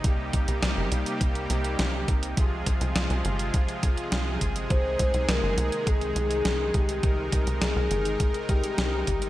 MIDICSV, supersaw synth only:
0, 0, Header, 1, 2, 480
1, 0, Start_track
1, 0, Tempo, 582524
1, 36, Time_signature, 4, 2, 24, 8
1, 7659, End_track
2, 0, Start_track
2, 0, Title_t, "Supersaw synth"
2, 0, Program_c, 0, 81
2, 0, Note_on_c, 0, 48, 83
2, 0, Note_on_c, 0, 63, 79
2, 36, Note_on_c, 0, 55, 76
2, 36, Note_on_c, 0, 58, 78
2, 36, Note_on_c, 0, 67, 89
2, 1923, Note_off_c, 0, 63, 0
2, 1937, Note_off_c, 0, 55, 0
2, 1937, Note_off_c, 0, 58, 0
2, 1937, Note_off_c, 0, 67, 0
2, 1956, Note_on_c, 0, 53, 73
2, 1956, Note_on_c, 0, 68, 92
2, 1957, Note_on_c, 0, 56, 73
2, 1957, Note_on_c, 0, 65, 78
2, 3857, Note_off_c, 0, 53, 0
2, 3857, Note_off_c, 0, 65, 0
2, 3875, Note_on_c, 0, 63, 78
2, 3876, Note_on_c, 0, 51, 74
2, 5763, Note_off_c, 0, 68, 0
2, 5796, Note_on_c, 0, 70, 88
2, 7659, Note_off_c, 0, 48, 0
2, 7659, Note_off_c, 0, 51, 0
2, 7659, Note_off_c, 0, 56, 0
2, 7659, Note_off_c, 0, 63, 0
2, 7659, Note_off_c, 0, 70, 0
2, 7659, End_track
0, 0, End_of_file